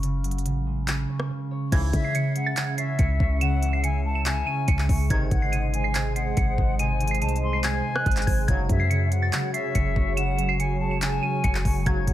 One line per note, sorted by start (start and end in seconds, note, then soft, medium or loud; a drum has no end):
0.00 0.47 F#1 loud
0.00 0.44 C#3 medium
0.00 0.65 G#3 medium
0.00 1.09 C#4 medium
0.00 1.51 C#5 medium
0.00 closed hi-hat medium
0.24 0.51 F#3 medium
0.24 closed hi-hat medium
0.31 closed hi-hat medium
0.38 closed hi-hat medium
0.46 1.06 A1 loud
0.46 0.86 C#3 medium
0.46 closed hi-hat medium
0.66 1.77 G#3 medium
0.88 1.29 C#3 medium
0.88 clap loud
0.88 closed hi-hat medium
1.09 2.77 C#4 medium
1.20 cross-stick loud
1.30 1.71 C#3 medium
1.51 3.20 C#5 medium
1.72 1.93 C#2 loud
1.72 2.02 G#2 loud
1.72 5.07 C#3 medium
1.72 2.13 C#3 loud
1.72 2.02 C#3 loud
1.72 2.02 E3 loud
1.72 5.07 C#4 medium
1.72 12.13 G#4 medium
1.72 5.07 E5 medium
1.72 2.02 G#6 loud
1.72 kick loud
1.72 closed hi-hat medium
1.72 crash loud
1.93 2.54 C#3 loud
1.93 2.20 E3 medium
1.93 2.33 E5 medium
1.93 kick loud
1.93 closed hi-hat medium
2.04 2.14 C7 medium
2.15 2.56 C#3 medium
2.15 2.45 C#7 medium
2.15 closed hi-hat medium
2.36 4.04 G#3 medium
2.36 2.76 F#5 medium
2.36 closed hi-hat medium
2.46 2.56 A6 medium
2.57 2.98 C#3 medium
2.57 2.76 G#6 medium
2.57 clap loud
2.57 closed hi-hat medium
2.78 4.47 C#4 medium
2.78 3.38 E5 loud
2.78 2.97 C7 medium
2.78 closed hi-hat medium
2.99 3.19 C#2 loud
2.99 3.40 C#3 medium
2.99 3.18 C#7 medium
2.99 kick loud
2.99 closed hi-hat medium
3.20 4.43 C#2 loud
3.20 4.89 C#5 medium
3.20 kick loud
3.41 3.82 C#3 loud
3.41 3.81 F#5 loud
3.41 3.71 E7 loud
3.41 closed hi-hat medium
3.62 3.89 E3 medium
3.62 closed hi-hat medium
3.73 3.83 C7 medium
3.84 4.25 C#3 medium
3.84 4.04 G#5 medium
3.84 4.13 C#7 medium
3.84 closed hi-hat medium
4.05 5.15 G#3 medium
4.05 4.25 A5 medium
4.15 4.45 E7 medium
4.26 4.67 C#3 medium
4.26 5.07 G#5 loud
4.26 clap loud
4.26 closed hi-hat medium
4.47 5.16 C#4 medium
4.47 4.66 D#7 medium
4.68 4.88 C#2 loud
4.68 5.15 C#3 medium
4.68 5.08 C#7 medium
4.68 kick loud
4.68 closed hi-hat medium
4.79 clap medium
4.89 5.10 C#2 loud
4.89 5.16 C#5 medium
4.89 kick loud
4.89 open hi-hat medium
5.10 5.31 G#1 loud
5.10 5.40 G#2 loud
5.10 5.40 C3 loud
5.10 5.36 C3 loud
5.10 5.40 D#3 loud
5.10 8.45 G#3 medium
5.10 8.45 C5 medium
5.10 8.45 D#5 loud
5.10 5.40 G#6 loud
5.10 kick loud
5.10 closed hi-hat medium
5.31 6.33 G#1 loud
5.31 5.58 D#3 medium
5.31 5.71 F#5 medium
5.31 kick loud
5.31 closed hi-hat medium
5.42 5.52 C7 medium
5.52 5.93 C3 medium
5.52 5.82 D#7 medium
5.52 closed hi-hat medium
5.74 7.05 G#3 medium
5.74 6.14 G#5 medium
5.74 closed hi-hat medium
5.84 5.94 C7 medium
5.95 6.36 C3 medium
5.95 6.14 G#6 medium
5.95 clap loud
5.95 closed hi-hat medium
6.16 7.85 C4 medium
6.16 6.76 F#5 medium
6.16 6.35 C7 medium
6.16 closed hi-hat medium
6.37 6.57 G#1 loud
6.37 6.78 C3 medium
6.37 6.56 C#7 medium
6.37 kick loud
6.37 closed hi-hat medium
6.58 7.23 G#1 loud
6.58 8.27 C5 medium
6.58 kick loud
6.79 7.05 C3 loud
6.79 7.19 G#5 medium
6.79 7.09 D#7 loud
6.79 closed hi-hat medium
7.00 7.27 D#3 medium
7.00 closed hi-hat medium
7.07 7.21 C7 medium
7.07 closed hi-hat medium
7.15 closed hi-hat medium
7.21 7.82 C2 loud
7.21 7.63 C3 medium
7.21 7.42 A5 medium
7.21 7.51 D#7 medium
7.21 closed hi-hat medium
7.29 closed hi-hat soft
7.36 closed hi-hat soft
7.43 8.53 G#3 medium
7.43 7.63 C6 medium
7.53 7.63 C7 medium
7.64 8.05 C3 medium
7.64 8.44 G#5 loud
7.64 7.94 G#6 medium
7.64 clap loud
7.64 closed hi-hat medium
7.85 8.54 C4 medium
7.95 8.25 F#6 medium
7.95 cross-stick loud
8.06 8.26 G#1 loud
8.06 8.53 C3 medium
8.06 kick loud
8.06 closed hi-hat soft
8.11 closed hi-hat medium
8.17 clap medium
8.17 closed hi-hat medium
8.22 closed hi-hat medium
8.27 8.47 G#1 loud
8.27 8.54 C5 medium
8.27 8.46 G#6 medium
8.27 kick medium
8.27 open hi-hat medium
8.48 8.69 F#1 loud
8.48 8.78 G#2 medium
8.48 8.89 C#3 loud
8.48 8.78 C#3 loud
8.48 12.13 F#3 medium
8.48 8.78 F#3 loud
8.48 12.13 F#4 medium
8.48 11.83 C#5 medium
8.48 8.78 G#6 loud
8.48 kick loud
8.48 closed hi-hat medium
8.69 9.30 F#2 loud
8.69 8.96 F#3 medium
8.69 9.09 E5 medium
8.69 kick medium
8.69 closed hi-hat medium
8.80 8.89 C7 medium
8.90 9.32 C#3 medium
8.90 9.20 C#7 medium
8.90 closed hi-hat medium
9.12 10.80 G#3 medium
9.12 9.52 F#5 medium
9.12 closed hi-hat medium
9.22 9.32 A6 medium
9.33 9.74 C#3 medium
9.33 9.52 G#6 medium
9.33 clap loud
9.33 closed hi-hat medium
9.53 11.22 C#4 medium
9.53 10.13 E5 loud
9.53 9.73 C7 medium
9.53 closed hi-hat medium
9.75 9.95 F#1 loud
9.75 10.16 C#3 medium
9.75 9.94 C#7 medium
9.75 kick loud
9.75 closed hi-hat medium
9.96 11.19 F#1 loud
9.96 11.65 C#5 loud
9.96 kick medium
10.17 10.58 C#3 loud
10.17 10.57 F#5 loud
10.17 10.47 E7 loud
10.17 closed hi-hat medium
10.38 10.65 F#3 medium
10.38 closed hi-hat medium
10.49 10.58 C7 loud
10.59 11.00 C#3 medium
10.59 10.80 G#5 medium
10.59 10.90 C#7 medium
10.59 closed hi-hat medium
10.80 12.13 G#3 medium
10.80 11.01 A5 medium
10.91 11.21 E7 medium
11.01 11.43 C#3 loud
11.01 11.82 G#5 loud
11.01 clap loud
11.01 closed hi-hat medium
11.23 12.13 C#4 medium
11.23 11.42 D#7 medium
11.44 11.64 F#1 loud
11.44 11.85 C#3 medium
11.44 11.84 C#7 loud
11.44 kick loud
11.44 closed hi-hat medium
11.55 clap medium
11.65 11.86 F#1 loud
11.65 12.13 C#5 loud
11.65 kick loud
11.65 open hi-hat medium
11.86 12.07 F#1 loud
11.86 12.13 G#2 medium
11.86 12.13 C#3 loud
11.86 12.13 F#3 loud
11.86 12.13 C#5 medium
11.86 12.13 G#6 loud
11.86 kick loud
11.86 closed hi-hat medium
12.07 12.13 F#1 loud
12.07 12.13 F#3 medium
12.07 12.13 F#5 medium
12.07 kick loud
12.07 closed hi-hat medium